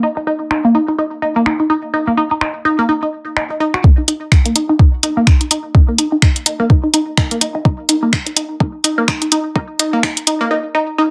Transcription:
0.03 synth pluck D#4
0.17 synth pluck D#4
0.27 synth pluck D#4
0.51 synth pluck D#4, finger snap
0.65 synth pluck A#3
0.75 synth pluck D#4
0.88 synth pluck D#4
0.98 synth pluck D#4
1.22 synth pluck D#4
1.36 synth pluck A#3
1.46 synth pluck D#4, finger snap
1.60 synth pluck D#4
1.70 synth pluck D#4
1.94 synth pluck D#4
2.07 synth pluck A#3
2.17 synth pluck D#4
2.31 synth pluck D#4
2.41 synth pluck D#4, finger snap
2.65 synth pluck D#4
2.79 synth pluck A#3
2.89 synth pluck D#4
3.03 synth pluck D#4
3.37 synth pluck D#4, finger snap
3.50 synth pluck D#4
3.60 synth pluck D#4
3.74 synth pluck F#4, finger snap
3.84 synth pluck D#4, kick
3.98 synth pluck D#4
4.08 synth pluck D#4, closed hi-hat
4.32 synth pluck D#4, finger snap, kick
4.46 synth pluck A#3, closed hi-hat
4.56 synth pluck D#4, closed hi-hat
4.69 synth pluck D#4
4.79 synth pluck D#4, kick
5.03 synth pluck D#4, closed hi-hat
5.17 synth pluck A#3
5.27 synth pluck D#4, finger snap, kick
5.41 synth pluck D#4, closed hi-hat
5.51 synth pluck D#4, closed hi-hat
5.75 synth pluck D#4, kick
5.88 synth pluck A#3
5.98 synth pluck D#4, closed hi-hat
6.12 synth pluck D#4
6.22 synth pluck D#4, finger snap, kick
6.36 closed hi-hat
6.46 synth pluck D#4, closed hi-hat
6.60 synth pluck A#3
6.70 synth pluck D#4, kick
6.84 synth pluck D#4
6.94 synth pluck D#4, closed hi-hat
7.17 synth pluck D#4, finger snap, kick
7.31 synth pluck A#3, closed hi-hat
7.41 synth pluck D#4, closed hi-hat
7.55 synth pluck D#4
7.65 synth pluck D#4, kick
7.89 synth pluck D#4, closed hi-hat
8.03 synth pluck A#3
8.13 synth pluck D#4, finger snap, kick
8.26 synth pluck D#4, closed hi-hat
8.36 synth pluck D#4, closed hi-hat
8.60 synth pluck D#4, kick
8.84 synth pluck D#4, closed hi-hat
8.98 synth pluck A#3
9.08 synth pluck D#4, finger snap, kick
9.22 synth pluck D#4, closed hi-hat
9.32 synth pluck D#4, closed hi-hat
9.56 synth pluck D#4, kick
9.79 synth pluck D#4, closed hi-hat
9.93 synth pluck A#3
10.03 synth pluck D#4, finger snap, kick
10.17 closed hi-hat
10.27 synth pluck D#4, closed hi-hat
10.41 synth pluck A#3
10.51 synth pluck D#4
10.75 synth pluck D#4
10.98 synth pluck D#4

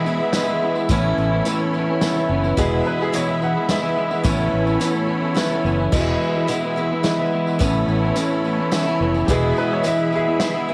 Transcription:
Already playing: clean electric guitar E2 B2, accordion G#4 E5 B5
0.05 clean electric guitar E3 G#3 B3 E4, tambourine
0.20 clean electric guitar E3 G#3 B3 E4
0.33 steel-string acoustic guitar E3 G#3 B3 E4, snare, closed hi-hat, tambourine
0.47 clean electric guitar E3 G#3 B3 E4
0.61 clean electric guitar E3 G#3 B3 E4
0.75 clean electric guitar E3 G#3 B3 E4, tambourine
0.89 fingered electric bass A1, clean electric guitar A2 E3 B3 C#4 E4, accordion A4 C#5, kick, closed hi-hat, tambourine
1.18 fingered electric bass A1, tambourine
1.31 clean electric guitar B3 C#4 E4
1.45 clean electric guitar A2 E3 B3 C#4 E4, closed hi-hat, tambourine
1.60 clean electric guitar B3 C#4 E4
1.74 clean electric guitar E3 B3 C#4 E4, tambourine
1.87 clean electric guitar B3 C#4 E4
2.01 steel-string acoustic guitar E3 B3 C#4 E4, snare, closed hi-hat, tambourine
2.16 clean electric guitar B3 C#4 E4
2.29 fingered electric bass F#1, clean electric guitar E3 B3 C#4 E4
2.43 clean electric guitar B3 C#4 E4, tambourine
2.57 fingered electric bass E1, clean electric guitar E2 B2 E3 G#3 B3 E4, accordion G#4 E5, upright piano G#4, kick, closed hi-hat, tambourine
2.85 upright piano B4, tambourine
2.99 clean electric guitar E3 G#3 B3 E4, upright piano G#4
3.13 clean electric guitar E2 B2 E3 G#3 B3 E4, upright piano C#5, closed hi-hat, tambourine
3.26 clean electric guitar E3 G#3 B3 E4, upright piano E5
3.41 clean electric guitar E3 G#3 B3 E4, upright piano F#5, tambourine
3.54 clean electric guitar E3 G#3 B3 E4
3.69 steel-string acoustic guitar E3 G#3 B3 E4, upright piano E5, snare, closed hi-hat, tambourine
3.82 clean electric guitar E3 G#3 B3 E4
3.96 clean electric guitar E3 G#3 B3 E4
4.10 clean electric guitar E3 G#3 B3 E4, tambourine
4.24 fingered electric bass A1, clean electric guitar A2 E3 B3 C#4 E4, accordion A4 C#5, kick, closed hi-hat, tambourine
4.53 fingered electric bass A1
4.66 clean electric guitar B3 C#4 E4, tambourine
4.80 clean electric guitar A2 E3 B3 C#4 E4, closed hi-hat, tambourine
4.93 clean electric guitar B3 C#4 E4, tambourine
5.07 clean electric guitar E3 B3 C#4 E4
5.22 clean electric guitar B3 C#4 E4
5.34 steel-string acoustic guitar E3 B3 C#4 E4, snare, closed hi-hat, tambourine
5.50 clean electric guitar B3 C#4 E4
5.64 fingered electric bass F#1, clean electric guitar E3 B3 C#4 E4, tambourine
5.78 clean electric guitar B3 C#4 E4
5.92 fingered electric bass E1, clean electric guitar E2 B2 E3 G#3 B3 E4, accordion G#4 E5, kick, tambourine, crash
6.21 tambourine
6.34 clean electric guitar E3 G#3 B3 E4
6.48 clean electric guitar E2 B2 E3 G#3 B3 E4, closed hi-hat, tambourine
6.63 clean electric guitar E3 G#3 B3 E4
6.77 clean electric guitar E3 G#3 B3 E4, tambourine
6.91 clean electric guitar E3 G#3 B3 E4
7.03 steel-string acoustic guitar E3 G#3 B3 E4, snare, closed hi-hat, tambourine
7.19 clean electric guitar E3 G#3 B3 E4
7.33 clean electric guitar E3 G#3 B3 E4
7.46 clean electric guitar E3 G#3 B3 E4, tambourine
7.60 fingered electric bass A1, clean electric guitar A2 E3 B3 C#4 E4, accordion A4 C#5, kick, closed hi-hat, tambourine
7.88 fingered electric bass A1, tambourine
8.02 clean electric guitar B3 C#4 E4
8.16 clean electric guitar A2 E3 B3 C#4 E4, closed hi-hat, tambourine
8.29 clean electric guitar B3 C#4 E4
8.44 clean electric guitar E3 B3 C#4 E4, tambourine
8.58 clean electric guitar B3 C#4 E4
8.72 steel-string acoustic guitar E3 B3 C#4 E4, snare, closed hi-hat, tambourine
8.86 clean electric guitar B3 C#4 E4
9.00 fingered electric bass F1, clean electric guitar E3 B3 C#4 E4
9.14 clean electric guitar B3 C#4 E4, tambourine
9.26 fingered electric bass E1, clean electric guitar E2 B2 E3 G#3 B3, upright piano G4, accordion G#4 E5 B5, kick, closed hi-hat, tambourine
9.31 clean electric guitar E4, upright piano G#4
9.57 upright piano B4, tambourine
9.70 clean electric guitar E3 G#3 B3 E4, upright piano C#5
9.84 clean electric guitar E2 B2 E3 G#3 B3 E4, upright piano E5, closed hi-hat, tambourine
9.97 clean electric guitar E3 G#3 B3 E4
10.12 clean electric guitar E3 G#3 B3 E4, upright piano G#4 E5, tambourine
10.26 clean electric guitar E3 G#3 B3 E4
10.40 steel-string acoustic guitar E3 G#3 B3 E4, snare, closed hi-hat, tambourine
10.53 clean electric guitar E3 G#3 B3 E4
10.67 clean electric guitar E3 G#3 B3 E4

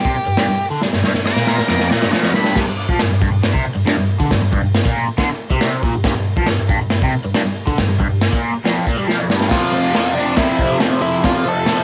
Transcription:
Already playing: lead electric guitar G4
0.05 overdriven electric guitar C3, kick
0.15 muted overdriven electric guitar stroke
0.27 overdriven electric guitar G2
0.37 overdriven electric guitar G2, snare, open hi-hat
0.49 overdriven electric guitar G2
0.70 overdriven electric guitar D3
0.82 overdriven electric guitar G2, snare
0.93 overdriven electric guitar G2, snare
1.03 overdriven electric guitar G2, snare
1.14 overdriven electric guitar G2, snare
1.26 lead electric guitar F5 D6, snare
1.36 overdriven electric guitar A#2, snare
1.47 lead electric guitar F5 D6, snare
1.58 muted overdriven electric guitar stroke, snare
1.68 overdriven electric guitar F2, lead electric guitar F5 D6, snare
1.80 snare
1.90 overdriven electric guitar A#2, lead electric guitar D5 A#5, snare
2.02 overdriven electric guitar G2, snare
2.11 overdriven electric guitar F3, lead electric guitar D5 A#5, snare
2.23 overdriven electric guitar F2, snare
2.34 overdriven electric guitar G2, lead electric guitar B5, snare
2.44 snare
2.55 overdriven electric guitar G2, kick, snare, crash
2.68 overdriven electric guitar G2
2.89 overdriven electric guitar F3, kick
2.99 overdriven electric guitar G2, snare, open hi-hat
3.10 overdriven electric guitar G2
3.22 overdriven electric guitar G2, kick
3.32 overdriven electric guitar G2
3.43 overdriven electric guitar G2, snare, open hi-hat
3.54 overdriven electric guitar C3, kick
3.65 muted overdriven electric guitar stroke
3.75 overdriven electric guitar G2
3.86 overdriven electric guitar G2, snare, open hi-hat
3.98 overdriven electric guitar G2
4.20 overdriven electric guitar D3, kick
4.30 overdriven electric guitar G2, kick, snare, open hi-hat
4.41 overdriven electric guitar G2
4.52 overdriven electric guitar G2, kick
4.63 overdriven electric guitar G2
4.75 snare, open hi-hat
4.85 overdriven electric guitar A#2, kick
5.07 muted overdriven electric guitar stroke
5.18 overdriven electric guitar D3, kick, snare, open hi-hat
5.29 muted overdriven electric guitar stroke
5.50 overdriven electric guitar C3, kick
5.61 snare, open hi-hat
5.83 overdriven electric guitar A#2, kick
5.95 overdriven electric guitar G2
6.04 overdriven electric guitar G2, kick, snare, open hi-hat
6.16 overdriven electric guitar G2
6.37 overdriven electric guitar F3, kick
6.46 overdriven electric guitar G2, snare, open hi-hat
6.59 overdriven electric guitar G2
6.69 overdriven electric guitar G2, kick
6.81 overdriven electric guitar G2
6.90 overdriven electric guitar G2, snare, open hi-hat
7.02 overdriven electric guitar C3, kick
7.13 muted overdriven electric guitar stroke
7.25 overdriven electric guitar G2
7.34 overdriven electric guitar G2, snare, open hi-hat
7.45 overdriven electric guitar G2
7.67 overdriven electric guitar D3, kick
7.78 overdriven electric guitar G2, kick, snare, open hi-hat
7.88 overdriven electric guitar G2
7.99 overdriven electric guitar G2, kick
8.09 overdriven electric guitar G2
8.21 snare, open hi-hat
8.31 overdriven electric guitar A#2, kick
8.54 muted overdriven electric guitar stroke
8.64 overdriven electric guitar F2, snare, open hi-hat
8.86 overdriven electric guitar A#2, kick
8.97 overdriven electric guitar G2
9.07 overdriven electric guitar F3, snare
9.18 overdriven electric guitar F2
9.29 overdriven electric guitar G2, snare
9.41 snare
9.49 overdriven electric guitar F2 C3 F3, lead electric guitar F4, kick, snare, crash
9.71 overdriven electric guitar F2 C3 F3
9.93 overdriven electric guitar F2 C3 F3, snare, crash
10.15 overdriven electric guitar F2 C3 F3, lead electric guitar D4
10.37 overdriven electric guitar F2 C3 F3, lead electric guitar E4, kick, snare, crash
10.59 overdriven electric guitar F2 C3 F3, kick
10.80 overdriven electric guitar F2 C3 F3, snare, crash
11.01 overdriven electric guitar F2 C3 F3, lead electric guitar E4
11.24 overdriven electric guitar F2 C3 F3, lead electric guitar F4, kick, snare, crash
11.45 overdriven electric guitar F2 C3 F3, lead electric guitar A4
11.66 overdriven electric guitar F2 C3 F3, snare, crash

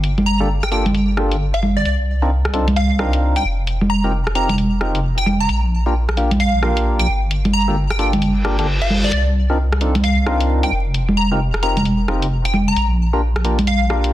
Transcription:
Already playing: wobble bass G1
0.04 closed hi-hat
0.18 closed hi-hat, high conga
0.26 digital synth lead A#5
0.40 synth stab A#3 D4 F4 G4 A4
0.63 digital synth lead G5, cross-stick
0.72 synth stab A#3 D4 F4 G4 A4, digital synth lead G5, closed hi-hat
0.86 closed hi-hat, high conga
0.95 closed hi-hat
1.17 synth stab A#3 D4 F4 G4 A4, cross-stick
1.31 closed hi-hat
1.54 digital synth lead F5, closed hi-hat
1.63 high conga
1.77 digital synth lead D5
1.85 wobble bass C2, digital synth lead D5, closed hi-hat
2.22 synth stab C4 D4 D#4 F4 A#4
2.45 cross-stick
2.53 synth stab C4 D4 D#4 F4 A4, closed hi-hat
2.68 closed hi-hat, high conga
2.76 digital synth lead F5, closed hi-hat
2.99 synth stab C4 D4 D#4 F4 A#4, cross-stick
3.13 closed hi-hat
3.36 digital synth lead G5, closed hi-hat
3.45 wobble bass F1
3.67 closed hi-hat
3.81 high conga
3.90 digital synth lead A#5
4.04 synth stab C4 D#4 F4 G4 A#4
4.27 cross-stick
4.35 synth stab C4 D#4 F4 G4 A#4, digital synth lead A#5, closed hi-hat
4.49 digital synth lead A#5, closed hi-hat, high conga
4.58 closed hi-hat
4.81 synth stab C4 D#4 F4 G4 A#4, cross-stick
4.95 closed hi-hat
5.18 digital synth lead G5, closed hi-hat
5.26 high conga
5.40 digital synth lead A#5
5.49 wobble bass A#1, closed hi-hat
5.86 synth stab A#3 D4 F4 G4 A#4
6.09 cross-stick
6.17 synth stab A#3 D4 F4 G4 A#4, closed hi-hat
6.31 closed hi-hat, high conga
6.40 digital synth lead F5, closed hi-hat
6.63 synth stab A#3 D4 F4 G4 A#4, cross-stick
6.77 closed hi-hat
6.99 digital synth lead G5, closed hi-hat
7.08 wobble bass G1
7.31 closed hi-hat
7.45 closed hi-hat, high conga
7.53 digital synth lead A#5
7.68 synth stab A#3 D4 F4 G4 A4
7.90 digital synth lead G5, cross-stick
7.99 synth stab A#3 D4 F4 G4 A4, digital synth lead G5, closed hi-hat
8.13 closed hi-hat, high conga
8.22 closed hi-hat, reverse cymbal
8.45 synth stab A#3 D4 F4 G4 A#4, cross-stick
8.59 synth stab A#3 D4 F4 G4 A4, closed hi-hat
8.82 digital synth lead F5, closed hi-hat
8.90 high conga
9.04 digital synth lead D5, closed hi-hat
9.13 wobble bass C2, digital synth lead D5, closed hi-hat
9.50 synth stab C4 D4 D#4 F4 A#4
9.72 cross-stick
9.81 synth stab C4 D4 D#4 F4 A4, closed hi-hat
9.95 closed hi-hat, high conga
10.04 digital synth lead F5, closed hi-hat
10.26 synth stab C4 D4 D#4 F4 A#4, cross-stick
10.40 closed hi-hat
10.63 digital synth lead G5, closed hi-hat
10.72 wobble bass F1
10.94 closed hi-hat
11.09 high conga
11.17 digital synth lead A#5
11.31 synth stab C4 D#4 F4 G4 A#4
11.54 cross-stick
11.63 synth stab C4 D#4 F4 G4 A#4, digital synth lead A#5, closed hi-hat
11.77 digital synth lead A#5, closed hi-hat, high conga
11.85 closed hi-hat
12.08 synth stab C4 D#4 F4 G4 A#4, cross-stick
12.22 closed hi-hat
12.45 digital synth lead G5, closed hi-hat
12.54 high conga
12.68 digital synth lead A#5
12.76 wobble bass A#1, closed hi-hat
13.13 synth stab A#3 D4 F4 G4 A#4
13.36 cross-stick
13.45 synth stab A#3 D4 F4 G4 A#4, closed hi-hat
13.59 closed hi-hat, high conga
13.67 digital synth lead F5, closed hi-hat
13.90 synth stab A#3 D4 F4 G4 A#4, cross-stick
14.04 closed hi-hat

